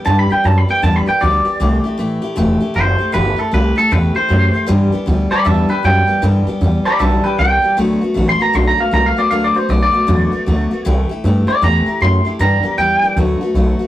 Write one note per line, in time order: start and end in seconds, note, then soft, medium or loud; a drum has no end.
0.05 0.30 G2 medium
0.05 0.30 D3 medium
0.05 0.30 E3 medium
0.05 0.30 G3 medium
0.05 0.29 B3 medium
0.05 0.28 G4 loud
0.05 0.18 A5 loud
0.19 0.31 B5 medium
0.30 0.43 E3 soft
0.30 0.44 G3 medium
0.30 0.45 B3 medium
0.30 0.44 G4 soft
0.30 0.45 G5 medium
0.30 muted upright bass stroke medium
0.44 0.68 F#2 medium
0.44 0.69 E3 medium
0.44 0.69 G3 medium
0.44 0.68 B3 medium
0.44 0.67 G4 medium
0.44 0.58 A5 medium
0.58 0.70 B5 medium
0.69 0.82 E3 soft
0.69 0.83 G3 soft
0.69 0.83 B3 medium
0.69 0.83 G4 medium
0.69 0.83 G5 loud
0.82 1.06 E2 medium
0.82 1.07 G2 medium
0.82 1.07 D3 medium
0.82 1.07 E3 medium
0.82 1.07 G3 medium
0.82 1.06 B3 medium
0.82 1.05 G4 medium
0.82 0.96 A5 medium
0.96 1.08 B5 medium
1.06 1.19 E3 soft
1.06 1.21 G3 medium
1.06 1.22 B3 medium
1.06 1.21 G4 medium
1.06 1.21 G5 loud
1.06 muted upright bass stroke medium
1.21 1.45 D2 loud
1.21 1.45 E3 medium
1.21 1.46 G3 medium
1.21 1.44 B3 medium
1.21 1.44 G4 medium
1.21 2.33 D5 loud
1.45 1.59 E3 soft
1.45 1.60 G3 soft
1.45 1.60 B3 soft
1.45 1.60 G4 medium
1.60 1.84 C2 medium
1.60 1.84 C3 medium
1.60 1.85 E3 medium
1.60 1.85 A3 medium
1.60 1.84 E4 medium
1.60 1.83 G4 medium
1.84 1.98 A3 soft
1.84 1.98 E4 soft
1.84 1.98 G4 medium
1.84 muted upright bass stroke medium
1.98 2.21 A1 loud
1.98 2.22 E3 medium
1.98 2.23 A3 medium
1.98 2.22 E4 medium
1.98 2.21 G4 medium
2.22 2.36 A3 soft
2.22 2.36 E4 medium
2.22 2.37 G4 medium
2.36 2.61 E1 medium
2.36 2.61 C3 medium
2.36 2.61 E3 medium
2.36 2.61 A3 loud
2.36 2.61 E4 loud
2.36 2.59 G4 loud
2.60 2.74 A3 soft
2.60 2.75 E4 medium
2.60 2.75 G4 medium
2.60 muted upright bass stroke medium
2.74 2.99 F#1 loud
2.74 2.99 E3 medium
2.74 3.00 A3 medium
2.74 2.99 E4 medium
2.74 2.97 G4 medium
2.74 3.13 C5 loud
2.99 3.12 A3 soft
2.99 3.13 E4 soft
2.99 3.14 G4 medium
2.99 muted upright bass stroke medium
3.12 3.38 G1 medium
3.12 3.38 C3 medium
3.12 3.38 E3 medium
3.12 3.38 A3 loud
3.12 3.37 E4 medium
3.12 3.35 G4 medium
3.12 3.39 B4 loud
3.36 3.51 A3 soft
3.36 3.52 E4 medium
3.36 3.52 G4 medium
3.36 3.53 A4 medium
3.51 3.76 C2 loud
3.51 3.76 E3 medium
3.51 3.77 A3 medium
3.51 3.76 E4 medium
3.51 3.75 G4 medium
3.51 3.77 B4 medium
3.76 3.91 A3 medium
3.76 3.91 E4 medium
3.76 3.91 G4 medium
3.76 3.92 A4 loud
3.91 4.15 E2 loud
3.91 4.15 C3 medium
3.91 4.16 E3 medium
3.91 4.16 A3 medium
3.91 4.15 E4 loud
3.91 4.14 G4 medium
3.91 4.15 B4 medium
4.15 4.28 A3 soft
4.15 4.30 E4 soft
4.15 4.29 G4 medium
4.15 4.67 C5 loud
4.15 muted upright bass stroke medium
4.29 4.54 F#2 loud
4.29 4.54 E3 medium
4.29 4.54 A3 medium
4.29 4.54 E4 medium
4.29 4.52 G4 medium
4.53 4.68 A3 soft
4.53 4.68 E4 medium
4.53 4.68 G4 medium
4.53 muted upright bass stroke medium
4.67 4.92 G2 medium
4.67 4.93 G2 loud
4.67 4.92 D3 loud
4.67 4.93 E3 loud
4.67 4.93 G3 loud
4.67 4.92 B3 loud
4.67 4.91 G4 loud
4.92 5.05 E3 medium
4.92 5.06 G3 medium
4.92 5.07 B3 medium
4.92 5.07 G4 medium
4.92 muted upright bass stroke medium
5.06 5.31 D2 loud
5.06 5.31 E3 medium
5.06 5.32 G3 medium
5.06 5.31 B3 medium
5.06 5.30 G4 medium
5.31 5.44 E3 medium
5.31 5.45 G3 medium
5.31 5.45 B3 medium
5.31 5.45 G4 medium
5.31 5.46 D5 medium
5.31 5.47 B5 medium
5.31 muted upright bass stroke medium
5.45 5.69 E2 loud
5.45 5.69 G2 medium
5.45 5.70 D3 medium
5.45 5.70 E3 medium
5.45 5.69 G3 medium
5.45 5.68 B3 medium
5.45 5.68 G4 medium
5.45 5.70 E5 medium
5.45 5.70 A5 medium
5.69 5.82 E3 soft
5.69 5.83 G3 soft
5.69 5.84 B3 soft
5.69 5.84 G4 medium
5.69 5.84 B4 medium
5.69 5.84 G5 medium
5.69 muted upright bass stroke medium
5.83 6.08 F#2 loud
5.83 6.08 E3 medium
5.83 6.08 G3 medium
5.83 6.07 B3 medium
5.83 6.06 G4 medium
5.83 6.22 G5 loud
6.07 6.22 E3 soft
6.07 6.22 G3 soft
6.07 6.23 B3 medium
6.07 6.22 G4 medium
6.07 muted upright bass stroke medium
6.22 6.47 G2 medium
6.22 6.46 G2 loud
6.22 6.47 D3 medium
6.22 6.47 E3 loud
6.22 6.48 G3 medium
6.22 6.47 B3 loud
6.22 6.46 G4 medium
6.47 6.60 E3 medium
6.47 6.60 G3 medium
6.47 6.61 B3 medium
6.47 6.61 G4 medium
6.47 muted upright bass stroke medium
6.61 6.84 E2 loud
6.61 6.86 E3 medium
6.61 6.86 G3 medium
6.61 6.85 B3 medium
6.61 6.84 G4 medium
6.85 6.99 E3 soft
6.85 6.99 G3 medium
6.85 7.00 B3 medium
6.85 7.00 G4 medium
6.85 7.00 D5 loud
6.85 7.00 B5 loud
6.85 muted upright bass stroke medium
6.99 7.24 B1 loud
6.99 7.24 G2 medium
6.99 7.24 D3 medium
6.99 7.24 E3 medium
6.99 7.25 G3 medium
6.99 7.24 B3 medium
6.99 7.22 G4 loud
6.99 7.24 E5 medium
6.99 7.25 A5 medium
7.24 7.37 E3 soft
7.24 7.38 G3 soft
7.24 7.39 B3 medium
7.24 7.38 G4 medium
7.24 7.38 B4 medium
7.24 7.38 G5 medium
7.24 muted upright bass stroke medium
7.38 7.62 C2 loud
7.38 7.63 E3 medium
7.38 7.63 G3 medium
7.38 7.62 B3 medium
7.38 7.61 G4 medium
7.38 7.76 G5 loud
7.62 7.77 E3 soft
7.62 7.78 G3 soft
7.62 7.77 B3 soft
7.62 7.77 G4 soft
7.77 8.00 D2 medium
7.77 8.01 D3 medium
7.77 8.02 F#3 medium
7.77 8.02 A3 medium
7.77 8.02 B3 loud
7.77 8.00 F#4 loud
8.01 8.14 A3 soft
8.01 8.15 B3 medium
8.01 8.16 F#4 medium
8.01 muted upright bass stroke soft
8.14 8.40 A1 loud
8.14 8.39 F#3 medium
8.14 8.40 A3 medium
8.14 8.40 B3 medium
8.14 8.38 F#4 medium
8.29 8.41 C6 loud
8.39 8.53 A3 soft
8.39 8.54 B3 medium
8.39 8.54 F#4 medium
8.39 8.55 A#5 loud
8.39 muted upright bass stroke medium
8.53 8.78 B1 loud
8.53 8.78 D3 medium
8.53 8.78 F#3 medium
8.53 8.79 A3 medium
8.53 8.78 B3 medium
8.53 8.76 F#4 medium
8.53 8.67 C6 medium
8.68 8.80 A#5 loud
8.78 8.91 A3 soft
8.78 8.92 B3 medium
8.78 8.92 F#4 medium
8.78 8.93 F5 medium
8.91 9.16 C2 loud
8.91 9.16 F#3 medium
8.91 9.17 A3 medium
8.91 9.17 B3 medium
8.91 9.15 F#4 medium
8.91 9.06 A#5 loud
9.06 9.18 F5 medium
9.17 9.30 A3 soft
9.17 9.31 B3 medium
9.17 9.31 F#4 medium
9.17 9.31 D5 loud
9.17 muted upright bass stroke medium
9.31 9.54 D2 medium
9.31 9.55 D3 medium
9.31 9.56 F#3 medium
9.31 9.56 A3 medium
9.31 9.55 B3 medium
9.31 9.53 F#4 medium
9.31 9.43 F5 loud
9.44 9.56 D5 loud
9.55 9.69 A3 soft
9.55 9.70 B3 soft
9.55 9.69 F#4 medium
9.55 9.70 C5 medium
9.55 muted upright bass stroke soft
9.69 9.93 B1 medium
9.69 9.94 F#3 medium
9.69 9.94 A3 medium
9.69 9.93 B3 medium
9.69 9.91 F#4 medium
9.69 9.81 D5 loud
9.83 10.95 D5 loud
9.92 10.07 A3 soft
9.92 10.07 B3 medium
9.92 10.07 F#4 medium
10.07 10.32 E2 loud
10.07 10.32 D3 medium
10.07 10.33 F#3 medium
10.07 10.33 A3 medium
10.07 10.32 B3 medium
10.07 10.30 F#4 medium
10.32 10.46 A3 soft
10.32 10.47 B3 medium
10.32 10.46 F#4 medium
10.32 muted upright bass stroke medium
10.46 10.71 D2 loud
10.46 10.71 F#3 medium
10.46 10.72 A3 medium
10.46 10.72 B3 medium
10.46 10.70 F#4 medium
10.71 10.85 A3 soft
10.71 10.86 B3 medium
10.71 10.85 F#4 medium
10.85 11.09 C2 loud
10.85 11.09 C3 loud
10.85 11.10 E3 loud
10.85 11.10 A3 loud
10.85 11.10 E4 loud
10.85 11.08 G4 loud
11.09 11.24 A3 medium
11.09 11.25 E4 medium
11.09 11.24 G4 medium
11.09 muted upright bass stroke medium
11.24 11.48 G2 loud
11.24 11.48 E3 medium
11.24 11.49 A3 medium
11.24 11.48 E4 medium
11.24 11.46 G4 medium
11.47 11.62 A3 medium
11.47 11.63 E4 medium
11.47 11.62 G4 medium
11.47 11.62 D5 loud
11.47 muted upright bass stroke medium
11.62 11.86 E2 loud
11.62 11.86 C3 medium
11.62 11.87 E3 medium
11.62 11.87 A3 medium
11.62 11.87 E4 loud
11.62 11.85 G4 medium
11.62 12.01 A#5 loud
11.86 12.01 A3 soft
11.86 12.02 E4 soft
11.86 12.01 G4 medium
11.86 muted upright bass stroke medium
12.01 12.25 F#2 loud
12.01 12.25 E3 medium
12.01 12.26 A3 medium
12.01 12.25 E4 medium
12.01 12.23 G4 medium
12.01 12.25 C6 loud
12.25 12.40 A3 soft
12.25 12.40 E4 medium
12.25 12.39 G4 medium
12.39 12.64 G2 medium
12.39 12.63 G2 medium
12.39 12.64 D3 medium
12.39 12.64 E3 medium
12.39 12.64 G3 medium
12.39 12.63 B3 medium
12.39 12.62 G4 loud
12.39 12.77 A#5 medium
12.63 12.76 E3 soft
12.63 12.78 G3 medium
12.63 12.78 B3 medium
12.63 12.78 G4 medium
12.63 muted upright bass stroke medium
12.78 13.01 E2 loud
12.78 13.02 E3 medium
12.78 13.03 G3 medium
12.78 13.02 B3 medium
12.78 13.01 G4 medium
12.78 13.15 G5 loud
13.02 13.17 E3 medium
13.02 13.17 G3 medium
13.02 13.17 B3 medium
13.02 13.17 G4 medium
13.02 muted upright bass stroke soft
13.16 13.40 D2 loud
13.16 13.41 D3 medium
13.16 13.41 F#3 medium
13.16 13.41 A3 medium
13.16 13.41 B3 medium
13.16 13.40 F#4 medium
13.41 13.55 A3 soft
13.41 13.56 B3 medium
13.41 13.55 F#4 medium
13.41 muted upright bass stroke medium
13.54 13.78 B1 loud
13.54 13.79 F#3 medium
13.54 13.80 A3 medium
13.54 13.80 B3 medium
13.54 13.78 F#4 medium
13.79 13.87 A3 soft
13.79 13.87 B3 medium
13.79 13.87 F#4 medium